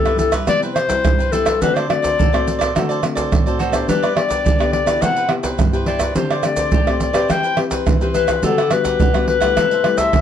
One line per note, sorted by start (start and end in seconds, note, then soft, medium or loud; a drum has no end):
0.00 0.44 G2 medium
0.00 0.14 G3 medium
0.00 0.14 B3 medium
0.00 0.14 E4 medium
0.00 0.15 A4 loud
0.05 0.33 G4 medium
0.05 0.32 B4 medium
0.05 0.31 E5 medium
0.05 pandeiro soft
0.05 tamborim medium
0.05 maracas soft
0.17 0.34 G3 medium
0.17 0.35 B3 medium
0.17 0.35 E4 medium
0.17 0.32 A4 medium
0.17 pandeiro medium
0.17 maracas medium
0.17 surdo soft
0.32 0.46 G4 medium
0.32 0.46 B4 medium
0.32 0.46 E5 medium
0.32 pandeiro medium
0.32 tamborim medium
0.32 maracas medium
0.32 surdo soft
0.46 1.01 C3 medium
0.46 0.73 G3 medium
0.46 0.74 B3 medium
0.46 0.74 E4 medium
0.46 0.60 E4 medium
0.46 0.61 B4 medium
0.46 0.61 C5 medium
0.46 0.61 D5 loud
0.46 0.61 G5 medium
0.46 pandeiro medium
0.46 tamborim medium
0.46 maracas medium
0.46 surdo medium
0.62 0.75 B4 medium
0.62 0.75 C5 medium
0.62 0.75 G5 medium
0.62 pandeiro soft
0.62 maracas soft
0.75 1.33 C5 loud
0.75 muted cavaquinho stroke soft
0.75 pandeiro medium
0.75 tamborim medium
0.75 maracas medium
0.88 1.27 G3 medium
0.88 1.28 E4 medium
0.88 1.17 B4 medium
0.88 1.18 C5 medium
0.88 1.17 G5 medium
0.88 pandeiro medium
0.88 maracas medium
0.88 surdo soft
1.04 1.58 G2 medium
1.04 pandeiro medium
1.04 tamborim medium
1.04 maracas medium
1.04 surdo loud
1.19 1.32 B4 medium
1.19 1.32 C5 medium
1.19 1.32 G5 medium
1.19 pandeiro soft
1.19 maracas soft
1.32 1.49 G3 medium
1.32 1.49 B3 medium
1.32 1.45 E4 medium
1.32 1.49 E4 medium
1.32 1.63 A4 medium
1.32 1.45 B4 medium
1.32 1.46 C5 medium
1.32 1.44 G5 medium
1.32 pandeiro medium
1.32 maracas medium
1.46 1.60 B4 soft
1.46 1.60 C5 soft
1.46 1.59 G5 soft
1.46 pandeiro medium
1.46 tamborim medium
1.46 maracas medium
1.46 surdo soft
1.61 2.15 D3 medium
1.61 1.85 A3 medium
1.61 1.85 C4 medium
1.61 1.74 F#4 soft
1.61 1.86 F#4 medium
1.61 1.74 A4 medium
1.61 1.76 B4 medium
1.61 1.75 C5 medium
1.61 1.75 D5 medium
1.61 pandeiro medium
1.61 maracas medium
1.61 surdo medium
1.74 1.88 A4 medium
1.74 1.89 C5 medium
1.74 1.89 D5 medium
1.74 pandeiro soft
1.74 tamborim medium
1.74 maracas soft
1.89 2.27 A3 medium
1.89 2.28 C4 soft
1.89 2.27 F#4 medium
1.89 2.71 D5 loud
1.89 muted cavaquinho stroke soft
1.89 pandeiro medium
1.89 tamborim medium
2.02 2.17 A4 soft
2.02 2.16 C5 medium
2.02 2.16 D5 medium
2.02 pandeiro medium
2.02 maracas medium
2.02 surdo soft
2.18 2.72 A2 medium
2.18 2.31 F#4 soft
2.18 2.31 A4 medium
2.18 2.31 C5 medium
2.18 2.31 D5 medium
2.18 pandeiro medium
2.18 maracas medium
2.18 surdo medium
2.33 2.71 A3 medium
2.33 2.71 C4 medium
2.33 2.71 F#4 medium
2.33 2.60 A4 soft
2.33 2.58 C5 medium
2.33 2.57 D5 medium
2.33 pandeiro soft
2.33 tamborim medium
2.33 maracas soft
2.48 pandeiro medium
2.48 maracas medium
2.59 2.74 A4 medium
2.59 2.73 C5 medium
2.59 2.73 D5 medium
2.59 pandeiro medium
2.59 tamborim medium
2.59 maracas medium
2.59 surdo soft
2.75 3.29 D3 medium
2.75 2.99 A3 medium
2.75 2.99 C4 medium
2.75 2.88 F#4 medium
2.75 2.99 F#4 medium
2.75 2.88 A4 medium
2.75 2.89 C5 medium
2.75 2.88 D5 medium
2.75 pandeiro medium
2.75 tamborim medium
2.75 maracas medium
2.75 surdo medium
2.89 3.02 A4 medium
2.89 3.02 C5 medium
2.89 3.02 D5 medium
2.89 pandeiro soft
2.89 maracas soft
3.03 3.41 A3 medium
3.03 3.41 C4 medium
3.03 3.41 F#4 medium
3.03 muted cavaquinho stroke soft
3.03 pandeiro medium
3.03 tamborim medium
3.03 maracas medium
3.15 3.45 A4 soft
3.15 3.44 C5 medium
3.15 3.44 D5 medium
3.15 pandeiro medium
3.15 maracas medium
3.15 surdo soft
3.32 3.86 A2 medium
3.32 pandeiro medium
3.32 tamborim medium
3.32 maracas medium
3.32 surdo loud
3.46 3.70 A3 medium
3.46 3.70 C4 medium
3.46 3.70 F#4 medium
3.46 3.58 A4 medium
3.46 3.59 C5 medium
3.46 3.59 D5 medium
3.46 pandeiro soft
3.46 maracas soft
3.59 3.73 F#4 medium
3.59 3.73 A4 medium
3.59 3.72 C5 medium
3.59 3.87 C5 medium
3.59 3.71 D5 medium
3.59 pandeiro medium
3.72 4.11 B3 medium
3.72 4.12 D4 medium
3.72 4.12 G4 medium
3.72 3.87 A4 soft
3.72 3.87 C5 soft
3.72 3.86 D5 soft
3.72 pandeiro medium
3.72 tamborim medium
3.72 maracas medium
3.72 surdo soft
3.88 4.42 G3 medium
3.88 4.01 D4 soft
3.88 4.02 G4 medium
3.88 4.15 B4 medium
3.88 4.02 B4 medium
3.88 4.01 D5 medium
3.88 pandeiro medium
3.88 maracas medium
3.88 surdo medium
4.02 4.15 G4 medium
4.02 4.15 B4 medium
4.02 4.16 D5 medium
4.02 pandeiro soft
4.02 tamborim medium
4.02 maracas soft
4.15 4.54 B3 soft
4.15 4.55 D4 medium
4.15 4.55 G4 medium
4.15 4.69 D5 loud
4.15 muted cavaquinho stroke soft
4.15 pandeiro medium
4.15 tamborim medium
4.28 4.44 G4 soft
4.28 4.44 B4 medium
4.28 4.43 D5 medium
4.28 pandeiro medium
4.28 maracas medium
4.28 surdo soft
4.44 4.99 D3 medium
4.44 4.58 D4 medium
4.44 4.58 G4 soft
4.44 4.59 B4 medium
4.44 4.57 D5 medium
4.44 pandeiro medium
4.44 maracas medium
4.44 surdo loud
4.59 4.83 B3 medium
4.59 4.83 D4 medium
4.59 4.84 G4 medium
4.59 4.87 G4 medium
4.59 4.86 B4 medium
4.59 4.85 D5 medium
4.59 pandeiro soft
4.59 tamborim medium
4.59 maracas soft
4.73 5.04 D5 medium
4.73 pandeiro medium
4.86 5.25 B3 medium
4.86 5.25 E4 medium
4.86 5.25 G4 medium
4.86 5.01 G4 soft
4.86 5.01 B4 medium
4.86 5.00 D5 medium
4.86 pandeiro medium
4.86 tamborim medium
4.86 maracas medium
4.86 surdo soft
5.02 5.56 C3 medium
5.02 5.15 E4 soft
5.02 5.16 B4 medium
5.02 5.16 C5 medium
5.02 5.31 F#5 loud
5.02 5.15 G5 medium
5.02 pandeiro medium
5.02 tamborim medium
5.02 maracas medium
5.02 surdo medium
5.16 5.29 B4 medium
5.16 5.28 C5 medium
5.16 5.29 G5 medium
5.16 pandeiro soft
5.16 maracas soft
5.28 5.68 B3 medium
5.28 5.68 E4 soft
5.28 5.68 G4 medium
5.28 muted cavaquinho stroke soft
5.28 pandeiro soft
5.28 tamborim medium
5.43 5.72 B4 medium
5.43 5.72 C5 medium
5.43 5.71 G5 medium
5.43 pandeiro medium
5.43 maracas medium
5.43 surdo soft
5.58 6.12 G2 medium
5.58 pandeiro medium
5.58 tamborim medium
5.58 maracas medium
5.58 surdo loud
5.72 6.11 B3 medium
5.72 6.11 E4 medium
5.72 6.11 G4 medium
5.72 5.87 B4 medium
5.72 5.86 C5 medium
5.72 5.86 G5 medium
5.72 pandeiro soft
5.72 maracas soft
5.86 6.00 E4 medium
5.86 6.01 B4 medium
5.86 6.01 C5 medium
5.86 6.14 D5 medium
5.86 6.00 G5 medium
5.86 pandeiro medium
6.00 6.15 B4 soft
6.00 6.16 C5 soft
6.00 6.15 G5 medium
6.00 pandeiro medium
6.00 tamborim medium
6.00 maracas medium
6.00 surdo soft
6.15 6.70 D3 medium
6.15 6.32 A3 soft
6.15 6.33 C4 medium
6.15 6.29 D4 soft
6.15 6.33 G4 medium
6.15 6.30 G4 soft
6.15 6.46 C5 medium
6.15 6.30 C5 medium
6.15 6.29 D5 medium
6.15 pandeiro medium
6.15 maracas medium
6.15 surdo medium
6.30 6.44 G4 medium
6.30 6.44 C5 medium
6.30 6.43 D5 medium
6.30 pandeiro soft
6.30 tamborim medium
6.30 maracas soft
6.43 6.82 A3 medium
6.43 6.82 C4 medium
6.43 6.83 G4 medium
6.43 7.01 D5 loud
6.43 muted cavaquinho stroke soft
6.43 pandeiro medium
6.43 tamborim medium
6.43 maracas medium
6.57 6.72 G4 medium
6.57 6.71 C5 medium
6.57 6.71 D5 medium
6.57 pandeiro medium
6.57 maracas medium
6.57 surdo soft
6.72 7.26 A2 medium
6.72 6.86 D4 soft
6.72 6.86 G4 medium
6.72 6.86 C5 medium
6.72 6.86 D5 medium
6.72 pandeiro medium
6.72 maracas medium
6.72 surdo loud
6.87 7.11 A3 medium
6.87 7.11 C4 medium
6.87 7.11 G4 medium
6.87 7.14 G4 soft
6.87 7.13 C5 medium
6.87 7.12 D5 medium
6.87 pandeiro soft
6.87 tamborim medium
6.87 maracas soft
7.00 7.33 D5 medium
7.00 pandeiro medium
7.00 maracas medium
7.00 surdo soft
7.13 7.53 C4 medium
7.13 7.53 G4 medium
7.13 7.28 G4 medium
7.13 7.53 B4 medium
7.13 7.28 C5 medium
7.13 7.27 D5 medium
7.13 pandeiro medium
7.13 tamborim medium
7.13 maracas medium
7.13 surdo soft
7.28 7.83 E3 medium
7.28 7.42 E4 medium
7.28 7.43 B4 medium
7.28 7.43 C5 medium
7.28 7.42 G5 medium
7.28 7.59 G5 loud
7.28 pandeiro medium
7.28 tamborim medium
7.28 maracas medium
7.28 surdo medium
7.43 7.57 B4 medium
7.43 7.56 C5 medium
7.43 7.57 G5 medium
7.43 pandeiro soft
7.43 maracas soft
7.57 7.96 C4 medium
7.57 7.96 G4 medium
7.57 7.96 B4 medium
7.57 muted cavaquinho stroke soft
7.57 pandeiro medium
7.57 tamborim medium
7.71 7.99 B4 medium
7.71 8.00 C5 medium
7.71 7.99 G5 medium
7.71 pandeiro medium
7.71 maracas medium
7.71 surdo soft
7.86 8.40 E3 medium
7.86 pandeiro medium
7.86 tamborim medium
7.86 maracas medium
7.86 surdo loud
8.01 8.39 C4 medium
8.01 8.39 G4 medium
8.01 8.15 B4 medium
8.01 8.40 B4 medium
8.01 8.14 C5 medium
8.01 8.14 G5 medium
8.01 pandeiro soft
8.01 maracas soft
8.14 8.28 E4 medium
8.14 8.45 B4 medium
8.14 8.27 B4 medium
8.14 8.28 C5 medium
8.14 8.26 G5 medium
8.14 pandeiro medium
8.14 maracas medium
8.27 8.42 B4 soft
8.27 8.42 C5 soft
8.27 8.41 G5 medium
8.27 pandeiro medium
8.27 tamborim medium
8.27 maracas medium
8.27 surdo soft
8.43 8.97 D3 medium
8.43 8.60 G3 medium
8.43 8.60 B3 medium
8.43 8.56 D4 soft
8.43 8.60 F#4 medium
8.43 8.57 G4 medium
8.43 8.74 A4 medium
8.43 8.57 B4 medium
8.43 8.57 F#5 medium
8.43 pandeiro medium
8.43 maracas medium
8.43 surdo medium
8.58 8.71 G4 medium
8.58 8.71 B4 medium
8.58 8.71 F#5 medium
8.58 pandeiro soft
8.58 tamborim medium
8.58 maracas soft
8.71 9.09 G3 medium
8.71 9.10 B3 medium
8.71 9.10 F#4 medium
8.71 9.27 B4 medium
8.71 muted cavaquinho stroke soft
8.71 pandeiro medium
8.71 tamborim medium
8.71 maracas medium
8.84 8.99 G4 medium
8.84 8.99 B4 medium
8.84 8.98 F#5 medium
8.84 pandeiro medium
8.84 maracas medium
8.84 surdo soft
9.00 9.54 D3 medium
9.00 9.13 D4 soft
9.00 9.14 G4 medium
9.00 9.14 B4 medium
9.00 9.13 F#5 medium
9.00 pandeiro medium
9.00 maracas medium
9.00 surdo loud
9.14 9.38 G3 medium
9.14 9.38 B3 medium
9.14 9.39 F#4 medium
9.14 9.42 G4 soft
9.14 9.41 B4 medium
9.14 9.39 F#5 medium
9.14 pandeiro soft
9.14 tamborim medium
9.14 maracas soft
9.28 10.00 B4 loud
9.28 pandeiro medium
9.40 9.80 G3 medium
9.40 9.81 A3 medium
9.40 9.81 E4 medium
9.40 9.56 G4 medium
9.40 9.56 B4 medium
9.40 9.55 F#5 medium
9.40 pandeiro medium
9.40 tamborim medium
9.40 maracas medium
9.40 surdo soft
9.57 10.11 C3 medium
9.57 9.70 E4 medium
9.57 9.71 A4 medium
9.57 9.71 C5 medium
9.57 9.70 E5 medium
9.57 pandeiro medium
9.57 tamborim medium
9.57 maracas medium
9.57 surdo medium
9.71 9.84 A4 medium
9.71 9.85 C5 medium
9.71 9.84 E5 medium
9.71 pandeiro soft
9.71 maracas soft
9.84 10.12 G3 medium
9.84 10.12 A3 medium
9.84 10.12 E4 medium
9.84 muted cavaquinho stroke soft
9.84 pandeiro medium
9.84 tamborim medium
9.98 10.21 A4 medium
9.98 10.21 C5 medium
9.98 10.21 E5 loud
9.98 10.21 E5 medium
9.98 pandeiro medium
9.98 maracas medium
9.98 surdo soft
10.13 10.21 G2 medium
10.13 pandeiro medium
10.13 tamborim medium
10.13 maracas medium
10.13 surdo loud